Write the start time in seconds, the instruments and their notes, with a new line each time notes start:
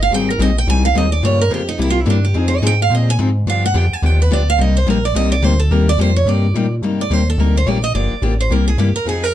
Already playing: analog synth bass G1
0.03 steel-string acoustic guitar F5
0.11 analog synth bass G#1, steel-string acoustic guitar D#3 G3 C4 D#4 G#4 G5
0.30 steel-string acoustic guitar A#4
0.38 analog synth bass A#1, steel-string acoustic guitar D#3 G3 C4 D#4 G#4 D#5
0.58 steel-string acoustic guitar G5
0.67 analog synth bass C2, steel-string acoustic guitar D#3 G3 C4 D#4 G#4 G#5
0.85 steel-string acoustic guitar F5
0.95 analog synth bass D#2, steel-string acoustic guitar D#3 G3 C4 D#4 G#4 D#5
1.12 steel-string acoustic guitar D5
1.23 analog synth bass G2, steel-string acoustic guitar C#3 F3 A#3 F4 G4 C#5
1.41 steel-string acoustic guitar A#4
1.50 analog synth bass F2, steel-string acoustic guitar C#3 F3 A#3 F4 G4
1.69 steel-string acoustic guitar D#4
1.78 analog synth bass C2, steel-string acoustic guitar C3 G3 A#3 E4 G4
1.90 steel-string acoustic guitar F4
2.01 steel-string acoustic guitar E4
2.06 analog synth bass G2, steel-string acoustic guitar C3 G3 A#3 E4 G4
2.10 steel-string acoustic guitar D4
2.25 steel-string acoustic guitar G4
2.34 analog synth bass F2, steel-string acoustic guitar F3 C4 D#4 G#4
2.38 steel-string acoustic guitar G#4
2.48 steel-string acoustic guitar C5
2.58 steel-string acoustic guitar D#5
2.62 analog synth bass G#2, steel-string acoustic guitar F3 C4 D#4 G#4
2.67 steel-string acoustic guitar G5
2.82 steel-string acoustic guitar F5
2.90 analog synth bass A#2, steel-string acoustic guitar F3 C4 D#4 G#4
2.95 steel-string acoustic guitar D#5
3.10 steel-string acoustic guitar G#5
3.19 analog synth bass G#2, steel-string acoustic guitar F3 C4 D#4 G#4
3.46 analog synth bass G2, steel-string acoustic guitar D3 F3 B3 D4 G4 F5
3.66 steel-string acoustic guitar F#5
3.74 analog synth bass F2, steel-string acoustic guitar D3 F3 B3 D4 G4
3.78 steel-string acoustic guitar G5
3.90 analog synth bass F2, steel-string acoustic guitar G#5
4.02 analog synth bass D#2, steel-string acoustic guitar D3 F3 B3 D4 G4 G5
4.22 steel-string acoustic guitar B4
4.30 analog synth bass D2, steel-string acoustic guitar D3 F3 B3 D4 G4 D5
4.50 steel-string acoustic guitar F5
4.58 analog synth bass C2, steel-string acoustic guitar C3 G3 A#3 D#4 G4 D#5
4.77 steel-string acoustic guitar C5
4.86 analog synth bass A#1, steel-string acoustic guitar C3 G3 A#3 D#4 G4 A#4
5.05 steel-string acoustic guitar D5
5.15 analog synth bass C2, steel-string acoustic guitar C3 G3 A#3 D#4 G4 D#5
5.32 steel-string acoustic guitar D5
5.42 analog synth bass D2, steel-string acoustic guitar C3 G3 A#3 D#4 G4 C5
5.59 steel-string acoustic guitar A4
5.71 analog synth bass D#2, steel-string acoustic guitar C3 G3 A#3 D#4 G4 A#4
5.89 steel-string acoustic guitar D5
5.98 analog synth bass F2, steel-string acoustic guitar C3 G3 A#3 D#4 G4 C5
6.16 steel-string acoustic guitar C#5
6.26 analog synth bass G2, steel-string acoustic guitar C3 G3 A#3 D#4 G4 D5
6.54 analog synth bass A#2, steel-string acoustic guitar C3 G3 A#3 D#4 G4
6.82 analog synth bass G2, steel-string acoustic guitar C3 G3 A#3 D#4 G4
7.01 steel-string acoustic guitar D5
7.10 analog synth bass D#2, steel-string acoustic guitar C3 G3 A#3 D#4 G4 C5
7.30 steel-string acoustic guitar A4
7.38 analog synth bass D2, steel-string acoustic guitar C3 G3 A#3 D#4 G4 A#4
7.57 steel-string acoustic guitar C5
7.66 analog synth bass A#1, steel-string acoustic guitar C3 G3 A#3 D#4 G4 D5
7.84 steel-string acoustic guitar D#5
7.94 analog synth bass G1, steel-string acoustic guitar D3 F3 A#3 D4 G4 D5
8.10 analog synth bass G1
8.22 analog synth bass A1, steel-string acoustic guitar D3 F3 A#3 D4 G4
8.41 steel-string acoustic guitar C5
8.50 analog synth bass C2, steel-string acoustic guitar C3 G3 A#3 E4 G4 A#4
8.68 steel-string acoustic guitar G#4
8.78 analog synth bass G2, steel-string acoustic guitar C3 G3 A#3 E4 G4
8.94 analog synth bass G2, steel-string acoustic guitar A#4
9.05 analog synth bass F2, steel-string acoustic guitar F3 C4 D#4 G#4
9.24 steel-string acoustic guitar A#4